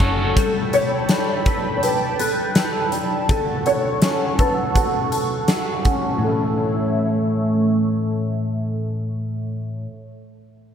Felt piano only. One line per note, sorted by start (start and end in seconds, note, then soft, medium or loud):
0.37 0.74 A4 medium
0.74 1.75 C#5 loud
1.77 1.83 C#5 medium
1.83 2.21 B4 medium
2.20 2.89 A4 medium
3.31 3.68 A4 medium
3.67 4.42 C#5 loud
4.40 4.77 B4 medium
4.76 5.82 A4 medium
6.24 9.87 A4 medium